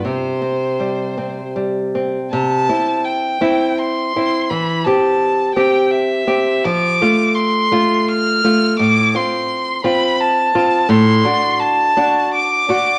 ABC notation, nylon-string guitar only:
X:1
M:3/4
L:1/8
Q:1/4=84
K:C
V:1 name="Nylon-string guitar"
C, C G, C G, C | C, [CE]2 [CE]2 [CE] | E, [CG]2 [CG]2 [CG] | F, [A,F]2 [A,F]2 [A,F] |
A,, [CF]2 [CF]2 [CF] | [K:Dmix] A,, [DF]2 [DF]2 [DF] |]